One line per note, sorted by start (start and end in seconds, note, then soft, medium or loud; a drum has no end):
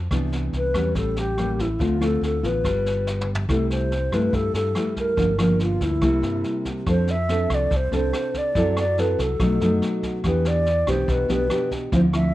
0.11 0.50 C2 medium
0.11 0.93 C3 soft
0.11 0.71 E3 medium
0.11 0.71 B3 soft
0.11 0.71 D4 medium
0.11 kick soft
0.11 cross-stick soft
0.11 snare soft
0.32 snare soft
0.53 0.72 C2 medium
0.53 0.94 B4 medium
0.53 snare soft
0.74 0.94 E2 medium
0.74 1.34 G3 medium
0.74 1.35 C#4 medium
0.74 kick soft
0.74 cross-stick soft
0.74 snare soft
0.95 1.76 A1 medium
0.95 1.77 A2 soft
0.95 1.20 A4 medium
0.95 kick medium
0.95 snare soft
1.16 1.62 G4 medium
1.16 snare soft
1.38 1.66 G3 soft
1.38 1.66 A#3 soft
1.38 1.66 C#4 medium
1.38 cross-stick soft
1.38 snare soft
1.59 1.84 E4 medium
1.59 kick soft
1.59 snare soft
1.79 2.19 D2 medium
1.79 2.62 D3 soft
1.79 1.97 A3 soft
1.79 1.97 C4 soft
1.79 1.98 F4 medium
1.79 2.02 F4 medium
1.79 kick soft
1.79 snare soft
2.00 2.39 A3 soft
2.00 2.40 C4 soft
2.00 2.40 F4 medium
2.00 cross-stick medium
2.00 snare soft
2.05 2.23 A4 medium
2.21 2.41 D2 medium
2.21 2.47 A4 medium
2.21 snare soft
2.43 2.63 A1 medium
2.43 3.24 B3 medium
2.43 3.24 F4 soft
2.43 3.29 B4 medium
2.43 kick soft
2.43 snare soft
2.64 3.45 G1 medium
2.64 3.46 G3 soft
2.64 kick soft
2.64 cross-stick soft
2.64 snare soft
2.86 snare soft
3.07 snare soft
3.21 mid tom soft
3.35 floor tom medium
3.49 4.08 C2 medium
3.49 4.31 C3 soft
3.49 3.90 G3 soft
3.49 3.91 A3 soft
3.49 3.91 E4 medium
3.49 3.70 A4 medium
3.49 kick soft
3.49 cross-stick soft
3.49 snare soft
3.70 4.16 C5 medium
3.70 snare soft
3.92 snare soft
4.12 4.32 G2 medium
4.12 4.72 G3 medium
4.12 4.72 A3 medium
4.12 4.72 E4 medium
4.12 4.36 B4 medium
4.12 kick soft
4.12 cross-stick medium
4.12 snare soft
4.33 5.15 G2 soft
4.33 4.53 G2 medium
4.33 4.55 A4 medium
4.33 kick medium
4.33 snare soft
4.54 4.73 G2 medium
4.54 4.94 A4 medium
4.54 snare soft
4.75 5.16 G3 medium
4.75 5.16 A3 soft
4.75 5.16 E4 medium
4.75 cross-stick soft
4.75 snare soft
4.96 5.37 A#4 medium
4.96 kick soft
4.96 snare soft
5.17 5.77 G1 medium
5.17 5.99 G2 soft
5.17 5.30 F3 soft
5.17 5.30 A#3 medium
5.17 5.30 D4 medium
5.17 kick medium
5.17 snare soft
5.38 5.98 F3 medium
5.38 5.98 A#3 soft
5.38 5.99 D4 medium
5.38 5.59 A#4 medium
5.38 cross-stick medium
5.38 snare soft
5.59 5.85 F4 medium
5.59 snare soft
5.81 6.00 D2 medium
5.81 6.66 E4 medium
5.81 kick soft
5.81 snare soft
6.01 6.21 C2 medium
6.01 6.84 C3 medium
6.01 6.83 G3 medium
6.01 6.83 A#3 soft
6.01 6.83 E4 medium
6.01 kick medium
6.01 cross-stick medium
6.01 snare soft
6.22 6.42 G2 medium
6.22 snare soft
6.44 snare soft
6.65 kick soft
6.65 snare soft
6.86 7.46 F2 medium
6.86 7.68 F3 medium
6.86 7.13 C4 medium
6.86 7.14 D4 medium
6.86 7.14 A4 medium
6.86 7.12 C5 medium
6.86 kick medium
6.86 cross-stick medium
6.86 snare soft
7.07 7.56 E5 loud
7.07 snare soft
7.29 7.71 C4 medium
7.29 7.71 D4 soft
7.29 7.71 A4 medium
7.29 snare soft
7.50 7.69 C2 medium
7.50 kick soft
7.50 cross-stick medium
7.50 snare soft
7.54 7.78 D5 medium
7.70 7.90 C2 medium
7.70 8.53 C3 soft
7.70 kick medium
7.70 snare soft
7.76 7.94 C5 medium
7.91 8.11 C2 medium
7.91 8.52 C4 medium
7.91 8.52 D4 medium
7.91 8.52 A4 medium
7.91 snare soft
7.96 8.39 C5 medium
8.13 cross-stick medium
8.13 snare soft
8.34 8.78 D5 medium
8.34 kick soft
8.34 snare soft
8.55 9.14 F#2 medium
8.55 9.38 F#3 medium
8.55 8.83 C4 soft
8.55 8.83 E4 medium
8.55 8.83 A4 medium
8.55 kick medium
8.55 snare soft
8.77 9.01 D5 loud
8.77 cross-stick medium
8.77 snare soft
8.98 9.26 C4 medium
8.98 9.26 E4 medium
8.98 9.26 A4 medium
8.98 9.12 B4 medium
8.98 snare soft
9.12 9.23 B4 medium
9.18 9.38 C2 medium
9.18 10.04 A4 medium
9.18 kick soft
9.18 snare soft
9.40 9.59 B1 medium
9.40 10.22 B2 medium
9.40 9.57 F#3 medium
9.40 9.58 A3 medium
9.40 9.58 D#4 medium
9.40 kick medium
9.40 cross-stick medium
9.40 snare soft
9.60 9.80 F#2 medium
9.60 10.21 F#3 medium
9.60 10.21 A3 medium
9.60 10.21 D#4 medium
9.60 snare soft
9.82 snare soft
10.03 kick soft
10.03 snare soft
10.24 10.83 E2 medium
10.24 11.06 E3 medium
10.24 10.66 B3 soft
10.24 10.66 D4 medium
10.24 10.66 G4 medium
10.24 10.49 B4 medium
10.24 kick soft
10.24 cross-stick medium
10.24 snare soft
10.45 10.91 D5 medium
10.45 snare soft
10.66 snare soft
10.87 11.06 B1 medium
10.87 11.26 B3 medium
10.87 11.26 D4 soft
10.87 11.26 G4 medium
10.87 11.13 C5 medium
10.87 kick soft
10.87 cross-stick medium
10.87 snare soft
11.08 11.28 B1 medium
11.08 11.90 B2 medium
11.08 11.31 B4 loud
11.08 kick soft
11.08 snare soft
11.28 11.48 B1 medium
11.28 11.47 B3 soft
11.28 11.47 D4 medium
11.28 11.47 G4 medium
11.28 snare soft
11.33 11.70 B4 medium
11.50 11.91 B3 soft
11.50 11.91 D4 soft
11.50 11.91 G4 medium
11.50 cross-stick medium
11.50 snare soft
11.71 kick soft
11.71 snare soft
11.92 12.34 D2 medium
11.92 12.34 D3 medium
11.92 12.05 F3 medium
11.92 12.05 C4 medium
11.92 12.05 E4 medium
11.92 12.01 C5 medium
11.92 kick soft
11.92 snare soft
12.13 12.34 F3 medium
12.13 12.34 C4 medium
12.13 12.34 E4 medium
12.13 12.34 E5 loud
12.13 cross-stick medium
12.13 snare soft